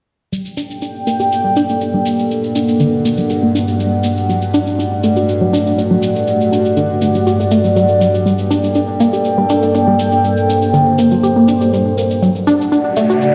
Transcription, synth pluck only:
0.32 G3
0.57 D4
0.82 D4
1.07 A#3
1.20 G4
1.44 G3
1.57 D4
1.69 A#3
1.81 D4
1.94 G3
2.56 D4
2.80 D3
3.05 A#3
3.18 F#3
3.30 G4
3.43 A#3
3.55 D4
3.68 G3
3.80 G3
4.05 A#3
4.29 F#3
4.54 D4
4.79 D4
5.04 A3
5.17 F#4
5.41 F#3
5.53 D4
5.66 A3
5.78 D4
5.91 F#3
6.52 D4
6.77 D3
7.02 A3
7.15 F#3
7.27 F#4
7.40 A3
7.52 A3
7.65 F#3
7.76 F#3
7.89 A3
8.01 F#3
8.26 G3
8.51 D4
8.75 D4
9.00 A#3
9.13 G4
9.38 G3
9.50 D4
9.63 A#3
9.75 D4
9.88 G3
10.49 D4
10.74 D3
10.99 A#3
11.12 F#3
11.23 G4
11.36 A#3
11.48 D4
11.61 G3
11.73 G3
11.98 A#3
12.22 F#3
12.47 D4
12.72 D4
12.97 A3
13.10 F#4

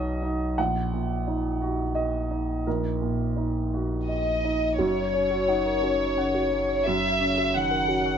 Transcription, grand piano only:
Already playing: B1 F#2 D#4 F#4 C#5 D#5 F#5
0.22 D#4
0.58 A#1 F#5
0.93 A#2
1.27 D#4
1.62 F#4
1.95 D#5
2.31 D#4
2.67 A#1 A#4
3.02 A#2
3.37 D#4
3.74 F#4
4.09 D#5
4.44 D#4
4.79 F#2
5.15 C#4
5.48 D#4
5.81 C#4
6.17 C#3
6.52 C#4
6.87 F#2
7.21 C#3
7.55 D#3
7.89 C#4

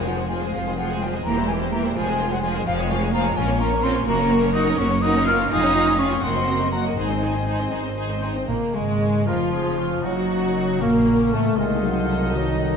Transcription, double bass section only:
Already playing: F1
0.53 F1
1.24 E1
1.96 F1
2.66 F1
3.36 A#1
4.06 F#1
4.78 F#1
5.51 F1
6.23 F#1
6.97 G#1
7.71 G#1
8.49 A#1
8.74 G#1
9.26 F1
10.04 F#1
10.81 A#1
11.33 A1
11.57 C2

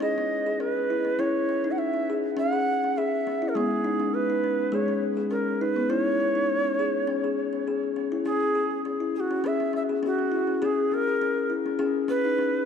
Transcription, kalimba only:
0.00 C#4 G#4
0.18 C#4
0.46 G#4
0.60 C#4
0.90 E4
1.05 C#4
1.19 C#4 E4
1.49 C#4
1.64 D#4
1.94 C#4
2.10 G#4
2.37 C#4
2.53 G#4
2.84 C#4
2.98 G#4
3.27 C#4
3.42 E4
3.55 G#3 B3
3.84 D#4
4.00 C#4
4.30 D#4
4.44 C#4
4.72 G#3 G#4
4.88 C#4
5.17 G#4
5.31 C#4
5.61 D#4
5.76 B3
5.90 C#4 E4
6.20 C#4
6.35 D#4
6.64 C#4
6.79 G#4
7.07 C#4
7.24 G#4
7.53 C#4
7.68 G#4
7.96 C#4
8.12 E4
8.26 C#4
8.55 G#4
8.85 C#4
9.00 E4
9.31 C#4
9.44 C#4 G#4
9.60 C#4
9.73 C#4
9.89 G#4
10.03 C#4
10.19 C#4
10.32 E4
10.47 C#4
10.62 C#4 G#4
10.92 C#4
11.07 G#4
11.22 C#4
11.50 E4
11.66 C#4
11.79 C#4 G#4
12.08 C#4
12.25 D#4
12.38 C#4

